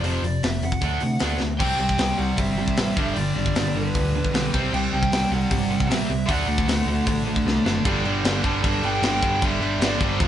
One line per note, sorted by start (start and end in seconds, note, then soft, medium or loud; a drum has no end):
0.03 0.17 F1 medium
0.03 0.22 F2 medium
0.03 0.22 C3 medium
0.03 0.23 F3 medium
0.03 0.22 C5 medium
0.03 open hi-hat medium
0.22 0.36 F1 medium
0.22 0.41 F2 medium
0.22 0.41 C3 medium
0.22 0.44 D5 medium
0.22 open hi-hat medium
0.43 0.56 F1 medium
0.43 0.61 F2 medium
0.43 0.61 C3 medium
0.43 0.64 E5 medium
0.43 snare loud
0.43 open hi-hat medium
0.62 0.76 F1 medium
0.62 0.80 F2 medium
0.62 0.80 C3 medium
0.62 1.38 F#5 medium
0.62 open hi-hat medium
0.72 kick medium
0.81 0.96 D2 medium
0.81 1.00 D3 medium
0.81 1.00 A3 loud
0.81 1.00 D4 medium
0.81 kick loud
0.81 open hi-hat medium
1.00 1.16 C3 medium
1.00 1.18 D3 medium
1.00 1.19 A3 medium
1.00 open hi-hat medium
1.19 1.35 D2 medium
1.19 1.38 D3 medium
1.19 1.38 A3 medium
1.19 1.40 D4 medium
1.19 snare loud
1.19 open hi-hat medium
1.39 1.62 D2 medium
1.39 1.57 D3 medium
1.39 1.58 A3 medium
1.39 snare medium
1.58 1.72 C2 medium
1.58 1.76 C3 medium
1.58 1.77 G3 medium
1.58 1.79 C4 medium
1.58 1.79 G5 loud
1.58 kick loud
1.58 crash loud
1.77 1.91 C2 medium
1.77 1.96 C3 medium
1.77 1.96 G3 medium
1.77 2.20 G5 loud
1.89 kick medium
1.98 2.11 C2 medium
1.98 2.16 C3 medium
1.98 2.16 G3 medium
1.98 snare loud
1.98 open hi-hat medium
2.17 2.31 C2 loud
2.17 2.35 C3 medium
2.17 2.35 G3 medium
2.17 2.37 F#5 loud
2.37 2.62 G1 medium
2.37 2.55 C3 medium
2.37 2.55 G3 medium
2.37 3.16 E5 loud
2.37 kick loud
2.37 open hi-hat medium
2.58 2.76 C3 medium
2.58 2.76 G3 medium
2.68 kick medium
2.77 2.89 A1 medium
2.77 2.96 C3 medium
2.77 2.96 G3 medium
2.77 snare loud
2.77 open hi-hat medium
2.96 3.09 G1 medium
2.96 3.15 G2 medium
2.96 3.15 D3 medium
2.96 3.16 G3 loud
2.96 kick loud
3.14 3.28 G1 medium
3.14 3.34 G2 medium
3.14 3.35 D3 medium
3.14 3.33 D5 loud
3.14 open hi-hat medium
3.35 3.48 G1 medium
3.35 3.54 G2 medium
3.35 3.54 D3 medium
3.35 3.76 D5 medium
3.46 kick medium
3.55 3.68 G1 medium
3.55 3.74 G2 medium
3.55 3.74 D3 medium
3.55 snare loud
3.55 open hi-hat medium
3.75 3.87 G1 medium
3.75 3.93 G2 medium
3.75 3.93 D3 medium
3.75 4.50 B4 medium
3.95 4.18 D2 medium
3.95 4.12 G2 medium
3.95 4.13 D3 medium
3.95 kick loud
3.95 open hi-hat medium
4.15 4.32 G2 medium
4.15 4.32 D3 medium
4.25 kick medium
4.34 4.46 B1 medium
4.34 4.52 G2 medium
4.34 4.52 D3 medium
4.34 4.54 G3 medium
4.34 snare loud
4.34 open hi-hat medium
4.53 4.65 C2 medium
4.53 4.72 C3 medium
4.53 4.72 G3 medium
4.53 4.72 C4 medium
4.53 kick loud
4.73 4.85 C2 medium
4.73 4.90 C3 medium
4.73 4.91 G3 medium
4.73 4.79 G5 medium
4.73 crash loud
4.93 5.05 C2 medium
4.93 5.11 C3 medium
4.93 5.11 G3 medium
4.93 5.29 G5 loud
5.03 kick loud
5.11 5.23 C2 medium
5.11 5.30 C3 medium
5.11 5.30 G3 medium
5.11 snare loud
5.11 open hi-hat medium
5.31 5.43 C2 loud
5.31 5.49 C3 medium
5.31 5.50 G3 medium
5.31 5.91 F#5 loud
5.51 5.74 G1 medium
5.51 5.69 C3 medium
5.51 5.69 G3 medium
5.51 kick loud
5.51 open hi-hat medium
5.70 5.88 C3 medium
5.70 5.88 G3 medium
5.80 kick medium
5.90 6.02 A1 medium
5.90 6.08 C3 medium
5.90 6.09 G3 medium
5.90 6.09 C4 medium
5.90 6.28 E5 loud
5.90 snare loud
5.90 open hi-hat medium
6.10 6.21 C2 medium
6.10 6.27 C3 medium
6.10 6.27 G3 medium
6.27 6.41 D2 medium
6.27 6.46 D3 medium
6.27 6.47 A3 loud
6.27 6.47 D4 medium
6.27 7.42 F#5 medium
6.27 kick loud
6.27 open hi-hat medium
6.47 6.59 D2 medium
6.47 6.65 D3 medium
6.47 6.65 A3 medium
6.58 kick medium
6.66 6.79 D2 medium
6.66 6.85 D3 medium
6.66 6.85 A3 medium
6.66 snare loud
6.66 open hi-hat medium
6.86 6.98 D2 medium
6.86 7.05 D3 medium
6.86 7.06 A3 medium
7.07 7.31 A1 medium
7.07 7.24 D3 medium
7.07 7.25 A3 medium
7.07 kick loud
7.07 open hi-hat medium
7.25 7.43 D3 medium
7.25 7.44 A3 medium
7.36 kick medium
7.45 7.57 C2 medium
7.45 7.64 D3 medium
7.45 7.64 A3 medium
7.45 snare medium
7.65 7.77 F#1 medium
7.65 7.83 D3 medium
7.65 7.83 A3 medium
7.65 7.84 D4 medium
7.65 snare loud
7.85 8.01 G1 medium
7.85 8.03 G2 medium
7.85 8.03 D3 medium
7.85 8.03 G3 loud
7.85 8.22 D5 medium
7.85 kick loud
7.85 crash medium
8.04 8.20 G1 medium
8.04 8.24 G2 medium
8.04 8.25 D3 loud
8.04 8.25 G3 medium
8.04 crash medium
8.24 8.40 G1 medium
8.24 8.42 G2 medium
8.24 8.43 D3 medium
8.24 8.44 G3 medium
8.24 snare loud
8.24 crash loud
8.44 8.60 G1 loud
8.44 8.61 G2 medium
8.44 8.62 D3 medium
8.44 8.63 G3 medium
8.44 8.81 A5 loud
8.44 kick medium
8.44 crash medium
8.63 8.79 G1 medium
8.63 8.82 G2 loud
8.63 8.83 D3 loud
8.63 8.83 G3 loud
8.63 kick loud
8.63 crash medium
8.83 8.99 G1 medium
8.83 9.02 G2 medium
8.83 9.02 D3 loud
8.83 9.03 G3 medium
8.83 9.03 G5 medium
8.83 crash medium
9.03 9.18 G1 medium
9.03 9.22 G2 medium
9.03 9.22 D3 loud
9.03 9.23 G3 loud
9.03 9.44 G5 medium
9.03 snare loud
9.03 crash loud
9.22 9.38 G2 medium
9.22 9.42 G2 medium
9.22 9.42 D3 medium
9.22 9.43 G3 loud
9.22 kick medium
9.22 crash medium
9.42 9.58 G1 loud
9.42 9.60 G2 medium
9.42 9.60 D3 loud
9.42 9.61 G3 loud
9.42 9.84 E5 loud
9.42 kick loud
9.42 crash medium
9.60 9.76 G1 loud
9.60 9.80 G2 medium
9.60 9.81 D3 loud
9.60 9.81 G3 medium
9.60 crash medium
9.80 9.96 G1 medium
9.80 10.00 G2 medium
9.80 10.01 D3 medium
9.80 10.02 G3 medium
9.80 snare loud
9.80 crash medium
9.85 10.03 D5 medium
9.99 10.16 G1 loud
9.99 10.19 G2 medium
9.99 10.19 D3 medium
9.99 10.18 G3 medium
9.99 kick loud
9.99 crash medium
10.03 10.20 G3 medium
10.03 10.28 C5 medium
10.20 10.28 F1 medium
10.20 10.28 F2 medium
10.20 10.28 C3 loud
10.20 10.28 F3 loud
10.20 kick loud
10.20 crash medium